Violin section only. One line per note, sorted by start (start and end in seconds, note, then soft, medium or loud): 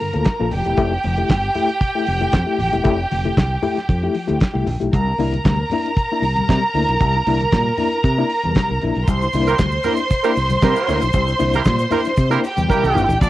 0.00 0.49 A#4 medium
0.00 0.48 A#5 medium
0.53 4.63 G4 medium
0.53 4.63 G5 medium
4.94 9.04 A#4 medium
4.94 9.04 A#5 loud
9.06 12.40 C5 medium
9.06 12.39 C6 loud
12.45 13.20 G4 medium
12.45 13.20 G5 loud
13.21 13.29 D4 loud
13.21 13.29 D5 loud